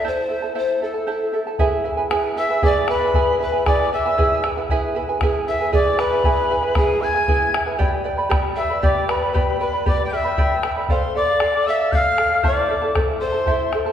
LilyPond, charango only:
\new Staff \with { instrumentName = "Charango" } { \time 6/8 \key e \phrygian \tempo 4. = 77 <e' a' c'' e'' a''>8 <e' a' e'' a''>16 <e' a' a''>16 <e' a' c'' e'' a''>8 <e' a' e'' a''>16 <e' a' a''>16 <e' a' c'' e'' a''>8 <e' a' e'' a''>16 <e' a' a''>16 | <e' gis' b' e'' gis''>8 <e' b' e'' gis''>16 <e' b' gis''>16 <e' gis' b' e'' gis''>8 <e' b' e'' gis''>16 <e' b' gis''>16 <e' gis' b' e'' gis''>8 <e' b' e'' gis''>16 <e' b' gis''>16 | <e' gis' b' e'' gis''>8 <e' b' e'' gis''>16 <e' b' gis''>16 <e' gis' b' e'' gis''>8 <e' b' e'' gis''>16 <e' b' gis''>16 <e' gis' b' e'' gis''>8 <e' b' e'' gis''>16 <e' b' gis''>16 | <e' gis' b' e'' gis''>8 <e' b' e'' gis''>16 <e' b' gis''>16 <e' gis' b' e'' gis''>8 <e' b' e'' gis''>16 <e' b' gis''>16 <e' gis' b' e'' gis''>8 <e' b' e'' gis''>16 <e' b' gis''>16 |
<e' gis' b' e'' gis''>8 <e' b' e'' gis''>16 <e' b' gis''>16 <e' gis' b' e'' gis''>8 <e' b' e'' gis''>16 <e' b' gis''>16 <e' gis' b' e'' gis''>8 <e' b' e'' gis''>16 <e' b' gis''>16 | <g' b' d'' g'' b''>8 <b' d'' g'' b''>16 <b' d'' b''>16 <g' b' d'' g'' b''>8 <b' d'' g'' b''>16 <b' d'' b''>16 <g' b' d'' g'' b''>8 <b' d'' g'' b''>16 <b' d'' b''>16 | <g' b' d'' g'' b''>8 <b' d'' g'' b''>16 <b' d'' b''>16 <g' b' d'' g'' b''>8 <b' d'' g'' b''>16 <b' d'' b''>16 <g' b' d'' g'' b''>8 <b' d'' g'' b''>16 <b' d'' b''>16 | <a' d'' f''>8 <a' d'' f''>16 <d'' f''>16 <a' d'' f''>8 <a' d'' f''>16 <d'' f''>16 <a' d'' f''>8 <a' d'' f''>16 <d'' f''>16 |
<e' a' c'' e'' a''>8 <e' a' e'' a''>16 <e' a' a''>16 <e' a' c'' e'' a''>8 <e' a' e'' a''>16 <e' a' a''>16 <e' a' c'' e'' a''>8 <e' a' e'' a''>16 <e' a' a''>16 | }